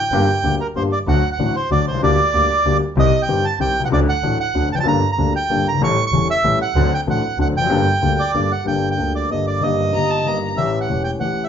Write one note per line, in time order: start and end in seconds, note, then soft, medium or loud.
0.00 0.55 G5 medium
0.12 0.25 G1 medium
0.12 0.25 G2 medium
0.12 0.25 D3 medium
0.12 0.25 G3 medium
0.12 0.26 A#3 medium
0.12 0.25 G4 medium
0.43 0.56 D2 soft
0.43 0.57 D2 soft
0.43 0.57 D3 soft
0.43 0.57 G3 soft
0.43 0.57 A#3 soft
0.43 0.57 G4 soft
0.61 0.67 A#4 medium
0.75 0.88 G1 medium
0.75 0.89 G1 soft
0.75 0.89 G2 soft
0.75 0.89 D3 soft
0.75 0.89 G3 soft
0.75 0.89 A#3 soft
0.75 0.89 G4 soft
0.75 0.83 C5 medium
0.92 0.99 D5 medium
1.07 1.20 D2 medium
1.07 1.20 D3 medium
1.07 1.20 F#3 medium
1.07 1.20 A3 soft
1.07 1.21 F#4 medium
1.07 1.30 F#5 medium
1.32 1.56 F#5 medium
1.38 1.52 A1 soft
1.38 1.52 A2 soft
1.38 1.52 D3 soft
1.38 1.52 F#3 soft
1.38 1.52 A3 soft
1.38 1.52 F#4 soft
1.56 1.70 C5 medium
1.70 1.83 D2 medium
1.70 1.84 D2 soft
1.70 1.84 D3 soft
1.70 1.84 F#3 soft
1.70 1.84 A3 soft
1.70 1.84 F#4 soft
1.70 1.86 D5 medium
1.86 2.01 C2 soft
1.86 2.02 C5 medium
1.90 1.94 B1 soft
1.90 1.98 C2 soft
1.99 2.02 C#2 medium
1.99 2.15 D2 medium
1.99 2.15 D3 medium
2.03 2.16 D2 medium
2.03 2.15 G3 medium
2.03 2.16 A#3 medium
2.03 2.16 G4 medium
2.03 2.77 D5 medium
2.34 2.47 D2 soft
2.34 2.47 D3 soft
2.34 2.47 G3 soft
2.34 2.47 A#3 soft
2.34 2.47 G4 soft
2.65 2.78 D2 soft
2.65 2.79 D2 soft
2.65 2.79 D3 medium
2.65 2.79 G3 soft
2.65 2.79 A#3 soft
2.65 2.79 G4 soft
2.96 3.09 C2 medium
2.96 3.10 C2 medium
2.96 3.10 C3 medium
2.96 3.10 D#3 medium
2.96 3.10 G3 medium
2.96 3.10 C4 medium
2.96 3.10 G4 medium
2.96 3.22 D#5 medium
3.22 3.45 G5 medium
3.28 3.41 G1 medium
3.28 3.42 G1 soft
3.28 3.42 G2 soft
3.28 3.42 D#3 soft
3.28 3.42 G3 soft
3.28 3.42 C4 soft
3.28 3.42 G4 soft
3.45 3.59 A5 medium
3.59 3.73 C2 soft
3.59 3.73 C3 soft
3.59 3.73 D#3 soft
3.59 3.73 G3 soft
3.59 3.73 C4 soft
3.59 3.73 G4 soft
3.59 3.82 G5 medium
3.75 3.90 C2 soft
3.80 3.83 B1 soft
3.84 3.88 C2 soft
3.84 3.91 C#2 medium
3.84 3.88 F#5 medium
3.91 4.04 D2 medium
3.91 4.05 D2 medium
3.91 4.05 D3 medium
3.91 4.05 F#3 medium
3.91 4.05 A3 medium
3.91 4.05 D4 medium
3.91 4.05 A4 medium
3.91 4.00 D5 medium
4.09 4.38 F#5 medium
4.23 4.36 A1 soft
4.23 4.37 A1 soft
4.23 4.36 A2 soft
4.23 4.36 F#3 soft
4.23 4.36 A3 soft
4.23 4.36 D4 soft
4.23 4.37 A4 soft
4.40 4.69 F#5 medium
4.55 4.68 D2 soft
4.55 4.68 D3 soft
4.55 4.68 F#3 soft
4.55 4.68 A3 soft
4.55 4.68 D4 soft
4.55 4.68 A4 soft
4.70 4.85 F1 soft
4.70 4.75 A5 medium
4.75 4.79 E2 soft
4.75 4.82 F2 soft
4.75 4.79 G5 medium
4.80 4.87 F#2 medium
4.80 4.87 A5 medium
4.86 4.99 G1 medium
4.86 5.00 G2 medium
4.86 4.99 G3 medium
4.86 4.99 A#3 medium
4.86 4.99 D4 medium
4.86 5.00 A4 medium
4.86 5.11 A#5 medium
5.12 5.33 A#5 medium
5.18 5.31 D2 medium
5.18 5.32 D2 soft
5.18 5.31 D3 soft
5.18 5.31 G3 soft
5.18 5.31 A#3 soft
5.18 5.32 D4 soft
5.18 5.32 A4 soft
5.36 5.67 G5 medium
5.50 5.63 G1 medium
5.50 5.63 G1 soft
5.50 5.63 G2 soft
5.50 5.63 G3 soft
5.50 5.63 A#3 soft
5.50 5.63 D4 soft
5.50 5.63 A4 soft
5.65 5.80 G1 soft
5.65 5.82 A#5 medium
5.69 5.73 F#1 soft
5.74 5.78 G1 soft
5.74 5.81 G#1 medium
5.81 5.94 A1 medium
5.81 5.95 A1 medium
5.81 5.95 A2 medium
5.81 5.95 G3 medium
5.81 5.95 C#4 medium
5.81 5.95 E4 medium
5.81 5.95 A4 medium
5.81 6.05 C#6 medium
6.06 6.28 C#6 medium
6.12 6.26 E1 medium
6.12 6.26 E1 soft
6.12 6.26 E2 soft
6.12 6.26 G3 soft
6.12 6.26 C#4 soft
6.12 6.26 E4 soft
6.12 6.27 A4 soft
6.31 6.59 E5 medium
6.43 6.57 A1 medium
6.43 6.58 A1 soft
6.43 6.58 A2 soft
6.43 6.58 G3 soft
6.43 6.58 C#4 soft
6.43 6.58 E4 soft
6.43 6.58 A4 soft
6.62 6.94 F#5 medium
6.75 6.89 D2 medium
6.75 6.89 D3 medium
6.75 6.89 F#3 medium
6.75 6.89 C4 medium
6.75 6.89 D4 medium
6.75 6.90 A4 medium
6.94 7.01 G5 medium
7.07 7.21 A1 soft
7.07 7.21 A2 soft
7.07 7.21 F#3 soft
7.07 7.21 C4 soft
7.07 7.21 D4 soft
7.07 7.21 A4 soft
7.07 7.39 F#5 medium
7.38 7.52 D2 soft
7.38 7.52 D3 medium
7.38 7.52 F#3 soft
7.38 7.52 C4 soft
7.38 7.52 D4 soft
7.38 7.53 A4 soft
7.38 7.48 F#5 medium
7.54 7.70 F1 soft
7.54 7.63 E2 soft
7.54 8.32 G5 medium
7.62 7.66 F2 soft
7.66 7.84 G1 medium
7.66 7.71 F#2 medium
7.66 7.84 G3 medium
7.66 7.84 A#3 medium
7.70 7.84 G1 medium
7.70 7.84 G2 medium
7.70 7.84 D4 medium
7.70 7.84 A4 medium
8.02 8.16 D2 soft
8.02 8.16 D3 soft
8.02 8.16 G3 soft
8.02 8.16 A#3 soft
8.02 8.16 D4 soft
8.02 8.16 A4 soft
8.20 8.52 D5 medium
8.34 8.48 G1 soft
8.34 8.48 G2 soft
8.34 8.48 G3 soft
8.34 8.48 A#3 soft
8.34 8.48 D4 soft
8.34 8.48 A4 soft
8.52 8.66 F#5 medium
8.64 8.97 G1 soft
8.64 8.97 G1 medium
8.64 8.96 G2 soft
8.64 8.94 G3 soft
8.64 8.96 A#3 soft
8.64 8.97 D4 soft
8.64 8.89 G5 medium
8.68 8.98 A4 soft
8.91 9.13 G5 medium
8.96 9.28 D2 soft
8.96 9.29 D2 soft
8.96 9.29 D3 soft
8.96 9.28 G3 soft
8.96 9.28 A#3 soft
8.96 9.29 D4 soft
8.96 9.29 A4 soft
9.16 9.30 D5 medium
9.29 9.61 G1 soft
9.29 9.61 G2 soft
9.29 9.60 G3 soft
9.29 9.61 A#3 soft
9.29 9.61 D4 soft
9.29 9.62 A4 soft
9.29 9.46 D#5 medium
9.47 9.63 D5 medium
9.60 9.92 G1 medium
9.60 9.92 G1 soft
9.60 9.92 G2 soft
9.60 9.91 D#3 soft
9.60 9.92 G3 soft
9.60 9.93 A#3 soft
9.60 9.93 G4 soft
9.60 10.38 D#5 medium
9.92 10.24 G1 soft
9.92 10.24 G2 soft
9.92 10.23 D#3 soft
9.92 10.24 G3 soft
9.92 10.25 A#3 soft
9.92 10.25 G4 soft
9.92 10.12 A#5 medium
10.10 10.29 A5 medium
10.24 10.55 G1 soft
10.24 10.56 G1 soft
10.24 10.56 G2 soft
10.24 10.55 D#3 soft
10.24 10.56 G3 soft
10.24 10.56 A#3 soft
10.24 10.57 G4 soft
10.24 10.50 A#5 medium
10.56 10.87 A1 medium
10.56 10.88 A1 soft
10.56 10.88 A2 soft
10.56 10.87 E3 soft
10.56 10.87 A3 soft
10.56 10.88 C#4 soft
10.56 10.89 G4 soft
10.56 10.79 E5 medium
10.81 11.03 F#5 medium
10.88 11.19 E1 soft
10.88 11.19 E2 soft
10.88 11.17 E3 soft
10.88 11.19 A3 soft
10.88 11.20 C#4 soft
10.88 11.20 G4 soft
11.04 11.11 G5 medium
11.19 11.49 A1 soft
11.19 11.49 A2 soft
11.19 11.49 E3 soft
11.19 11.49 A3 soft
11.19 11.49 C#4 soft
11.19 11.45 F#5 medium
11.23 11.49 G4 soft
11.44 11.49 E5 medium